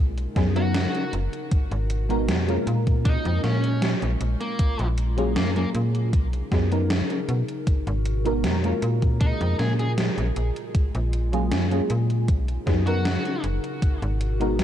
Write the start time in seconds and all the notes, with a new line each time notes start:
Already playing: B1 C#3 D#4 A#4
0.18 closed hi-hat
0.35 F#2 F#3 B3 C#4 D#4 G#4, kick, snare, closed hi-hat
0.55 F#3 B3 C#4 D#4 F#4 A#4, closed hi-hat
0.74 snare, closed hi-hat
0.95 closed hi-hat
1.13 F#1, closed hi-hat
1.33 closed hi-hat
1.51 G#1 B2 F#4, kick, closed hi-hat
1.71 G#1, closed hi-hat
1.90 closed hi-hat
2.09 G#3 B3 D#4 F#4 A#4, closed hi-hat
2.28 F2, snare, closed hi-hat
2.47 G#3 A#3 C#4 F4 A#4, closed hi-hat
2.67 A#2 G#3 C#4, closed hi-hat
2.87 kick, closed hi-hat
3.05 D#4, kick, closed hi-hat
3.25 F2, closed hi-hat
3.44 A#2 C#4, snare, closed hi-hat
3.64 closed hi-hat
3.82 snare, closed hi-hat
4.02 A#1, closed hi-hat
4.21 A#1 F4, closed hi-hat
4.41 A#3, closed hi-hat
4.59 A#1, kick, closed hi-hat
4.79 A#1, closed hi-hat
4.98 closed hi-hat
5.17 F#3 A#3 C#4 F4 G#4, closed hi-hat
5.36 F#2 A#3, snare, closed hi-hat
5.56 F#3 A#3 C#4 F4 G#4, closed hi-hat
5.75 A#2, closed hi-hat
5.95 closed hi-hat
6.13 B1 C#3 D#4 A#4, kick, closed hi-hat
6.33 closed hi-hat
6.51 F#2 F#3 B3 C#4 D#4 G#4, kick, snare, closed hi-hat
6.71 F#3 B3 C#4 D#4 A#4, closed hi-hat
6.90 snare, closed hi-hat
7.10 closed hi-hat
7.29 B2, closed hi-hat
7.49 closed hi-hat
7.67 G#1 B2 F#4, kick, closed hi-hat
7.87 G#1, closed hi-hat
8.05 closed hi-hat
8.25 G#3 B3 D#4 F#4 A#4, closed hi-hat
8.44 F2, snare, closed hi-hat
8.63 G#3 A#3 C#4 F4 A#4, closed hi-hat
8.82 A#2 C#3 G#4, closed hi-hat
9.02 kick, closed hi-hat
9.21 D#4, kick, closed hi-hat
9.41 F2, closed hi-hat
9.59 A#2 G#4, snare, closed hi-hat
9.79 G#4, closed hi-hat
9.98 snare, closed hi-hat
10.18 A#1, closed hi-hat
10.36 A#1 A#2 G#3 F4, closed hi-hat
10.56 closed hi-hat
10.75 A#1, kick, closed hi-hat
10.95 A#1, closed hi-hat
11.13 closed hi-hat
11.32 F#3 A#3 C#4 F4 G#4, closed hi-hat
11.52 F#2, snare, closed hi-hat
11.71 F#3 A#3 C#4 F4 G#4, closed hi-hat
11.90 A#2, closed hi-hat
12.10 closed hi-hat
12.28 B1 C#3 D#4 A#4, kick, closed hi-hat
12.48 closed hi-hat
12.66 F#2 F#3 B3 C#4 D#4 G#4, kick, snare, closed hi-hat
12.86 F#3 B3 C#4 D#4 F#4 A#4, closed hi-hat
13.05 snare, closed hi-hat
13.25 closed hi-hat
13.44 F#1, closed hi-hat
13.64 closed hi-hat
13.82 G#1 B2 F#4, kick, closed hi-hat
14.02 G#1, closed hi-hat
14.21 closed hi-hat
14.40 G#3 B3 D#4 F#4 A#4, closed hi-hat
14.59 F2, snare, closed hi-hat